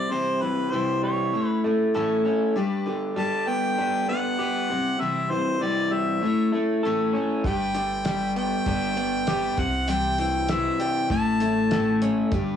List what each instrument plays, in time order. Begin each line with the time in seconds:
Already playing: clean electric guitar C3, steel-string acoustic guitar G3 C4 E4 C5, harmonica D5
0.11 clean electric guitar C3, steel-string acoustic guitar C3 E3 G3 C4 E4 C5, harmonica C5
0.42 clean electric guitar E3, steel-string acoustic guitar G3 C4 E4, harmonica B4
0.72 steel-string acoustic guitar C3 E3 G3 E4, clean electric guitar E3, harmonica C5
1.03 clean electric guitar G3, harmonica C#5
1.33 clean electric guitar A2, steel-string acoustic guitar A3 C#4 E4 C#5
1.48 harmonica B4
1.64 clean electric guitar A3, steel-string acoustic guitar A3 C#4 E4 C#5
1.94 steel-string acoustic guitar A2 E3 A3 C#4 E4 C#5, clean electric guitar A4
2.25 steel-string acoustic guitar A3 C#4 E4 C#5, clean electric guitar C#4
2.56 clean electric guitar G2, steel-string acoustic guitar G3 D4 G4 B4
2.86 clean electric guitar D3, steel-string acoustic guitar D4 G4 B4
3.16 clean electric guitar G3, steel-string acoustic guitar G3 D4 G4 B4, harmonica A5
3.47 clean electric guitar B3, harmonica G5
3.78 steel-string acoustic guitar G3 D4 G4 B4, clean electric guitar D4
4.08 clean electric guitar B3, steel-string acoustic guitar D4 G4 B4, harmonica F#5
4.39 steel-string acoustic guitar G3 D4 G4 B4, clean electric guitar G4
4.70 clean electric guitar C3, steel-string acoustic guitar G3 C4 E4 C5
5.00 clean electric guitar C3, steel-string acoustic guitar C3 E3 G3 C4 E4 C5, harmonica E5
5.30 clean electric guitar E3, steel-string acoustic guitar C4 E4 C5, harmonica C5
5.34 steel-string acoustic guitar G3
5.61 steel-string acoustic guitar C3 E3 G3 C4 E4 C5, clean electric guitar E3, harmonica D5
5.91 clean electric guitar G3, harmonica E5
6.22 clean electric guitar A2, steel-string acoustic guitar A3 C#4 E4 C#5
6.52 clean electric guitar A3, steel-string acoustic guitar A3 C#4 E4 C#5
6.83 steel-string acoustic guitar A2 E3 A3 C#4 E4 C#5, clean electric guitar A4
7.13 clean electric guitar C#4, steel-string acoustic guitar C#4 E4 C#5
7.18 steel-string acoustic guitar A3
7.44 upright bass G1, clean electric guitar G2, steel-string acoustic guitar G3 D4 G4 B4, harmonica G5, kick, closed hi-hat
7.75 clean electric guitar D3, steel-string acoustic guitar D4 G4 B4, closed hi-hat
8.05 steel-string acoustic guitar G3 D4 G4 B4, clean electric guitar G3, snare, closed hi-hat
8.36 clean electric guitar B3, harmonica G5, closed hi-hat
8.65 upright bass G1, steel-string acoustic guitar G3 D4 G4 B4, clean electric guitar D4, kick, closed hi-hat
8.96 clean electric guitar B3, steel-string acoustic guitar D4 G4 B4, closed hi-hat
9.27 steel-string acoustic guitar G3 D4 G4 B4, clean electric guitar G4, snare, closed hi-hat
9.56 upright bass C2, clean electric guitar C3, steel-string acoustic guitar G3 C4 E4 C5, harmonica F#5, kick, closed hi-hat
9.88 steel-string acoustic guitar C3 E3 G3 C4 E4 C5, clean electric guitar C3, harmonica G5, closed hi-hat
10.18 clean electric guitar E3, steel-string acoustic guitar G3 C4 E4 C5, harmonica G5, closed hi-hat
10.48 steel-string acoustic guitar C3 E3 G3 C4 E4 C5, clean electric guitar E3, harmonica E5, snare, closed hi-hat
10.80 clean electric guitar G3, harmonica G5, closed hi-hat
11.10 upright bass A1, clean electric guitar A2, steel-string acoustic guitar A3 C#4 E4 C#5, harmonica A5, kick, closed hi-hat
11.40 clean electric guitar A3, steel-string acoustic guitar A3 C#4 E4 C#5, closed hi-hat
11.71 steel-string acoustic guitar A2 E3 A3 C#4 E4 C#5, clean electric guitar A4, snare, closed hi-hat
12.02 steel-string acoustic guitar A3 C#4 E4 C#5, clean electric guitar C#4, closed hi-hat
12.32 upright bass G1, clean electric guitar G2, steel-string acoustic guitar G3 D4 G4 B4, kick, closed hi-hat